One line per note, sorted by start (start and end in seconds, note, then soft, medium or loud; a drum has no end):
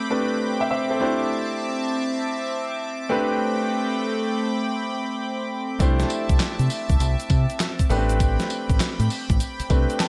0.00 0.10 A3 medium
0.00 0.98 A3 medium
0.00 0.11 C4 medium
0.00 10.08 C4 medium
0.00 0.11 D4 medium
0.00 0.11 G4 medium
0.00 0.11 B4 medium
0.00 0.98 G5 medium
0.00 0.98 B5 medium
0.00 10.08 D6 medium
0.10 0.98 A3 medium
0.10 1.00 C4 medium
0.10 0.99 D4 medium
0.10 1.00 G4 medium
0.10 0.41 B4 medium
0.60 0.69 E5 medium
0.60 0.70 G5 medium
0.71 0.88 C5 medium
0.71 0.89 E5 medium
0.90 1.19 A4 medium
0.90 1.00 C5 medium
0.99 3.06 A3 medium
0.99 3.06 D4 medium
0.99 3.07 E4 medium
0.99 3.07 G4 medium
0.99 3.07 C5 medium
0.99 3.08 E5 medium
0.99 3.08 A5 medium
3.09 5.46 A3 medium
3.09 5.78 A3 medium
3.09 5.46 C4 medium
3.09 5.46 D4 medium
3.09 5.47 G4 medium
3.09 5.47 B4 medium
3.09 5.78 G5 medium
3.09 5.78 B5 medium
5.79 6.03 C2 loud
5.79 7.86 A3 medium
5.79 7.86 D4 medium
5.79 7.86 E4 medium
5.79 7.87 G4 medium
5.79 7.87 C5 medium
5.79 7.88 E5 medium
5.79 7.88 A5 medium
5.79 kick loud
5.79 closed hi-hat medium
5.79 tambourine medium
5.79 shaker medium
6.00 snare medium
6.00 closed hi-hat medium
6.00 shaker soft
6.10 closed hi-hat medium
6.10 tambourine medium
6.29 6.38 C2 medium
6.29 kick loud
6.29 closed hi-hat medium
6.29 shaker soft
6.40 muted fingered electric bass stroke medium
6.40 snare loud
6.40 clap medium
6.40 closed hi-hat medium
6.40 tambourine medium
6.40 shaker medium
6.59 6.68 C3 loud
6.59 closed hi-hat medium
6.59 shaker soft
6.70 open hi-hat medium
6.70 tambourine medium
6.70 shaker medium
6.90 6.98 C2 medium
6.90 kick medium
6.90 closed hi-hat soft
6.90 shaker soft
7.00 7.15 C2 loud
7.00 closed hi-hat medium
7.00 tambourine medium
7.00 shaker medium
7.20 closed hi-hat medium
7.20 shaker medium
7.30 7.45 C3 loud
7.30 kick loud
7.30 closed hi-hat medium
7.30 tambourine medium
7.50 closed hi-hat medium
7.50 shaker soft
7.60 snare loud
7.60 clap medium
7.60 closed hi-hat medium
7.60 tambourine medium
7.60 shaker medium
7.79 kick medium
7.79 closed hi-hat medium
7.79 shaker medium
7.90 8.36 A1 loud
7.90 9.66 A3 medium
7.90 7.99 B3 medium
7.90 9.67 D4 medium
7.90 9.67 G4 medium
7.90 9.68 B4 medium
7.90 10.08 G5 medium
7.90 10.08 B5 medium
7.90 open hi-hat medium
7.90 shaker soft
7.97 9.69 C4 medium
8.09 closed hi-hat medium
8.09 shaker medium
8.20 kick loud
8.20 closed hi-hat medium
8.20 tambourine medium
8.20 shaker medium
8.40 snare medium
8.40 closed hi-hat medium
8.40 shaker medium
8.50 closed hi-hat medium
8.50 tambourine medium
8.69 8.78 A1 loud
8.69 kick loud
8.69 closed hi-hat medium
8.69 shaker medium
8.80 muted fingered electric bass stroke medium
8.80 snare loud
8.80 clap medium
8.80 closed hi-hat medium
8.80 tambourine loud
8.80 shaker medium
8.99 9.08 A2 loud
8.99 closed hi-hat medium
8.99 shaker soft
9.10 open hi-hat medium
9.10 tambourine medium
9.10 shaker soft
9.30 9.38 A1 loud
9.30 kick loud
9.30 closed hi-hat soft
9.30 shaker medium
9.40 closed hi-hat medium
9.40 tambourine medium
9.40 shaker medium
9.60 muted fingered electric bass stroke soft
9.60 closed hi-hat medium
9.60 shaker soft
9.70 9.85 C2 medium
9.70 10.08 A3 medium
9.70 10.08 C4 medium
9.70 10.08 D4 medium
9.70 10.08 G4 medium
9.70 10.01 B4 medium
9.70 kick medium
9.70 closed hi-hat medium
9.70 tambourine medium
9.90 closed hi-hat medium
9.90 shaker soft
10.00 10.08 A5 medium
10.00 snare loud
10.00 clap loud
10.00 closed hi-hat medium
10.00 tambourine medium
10.00 shaker medium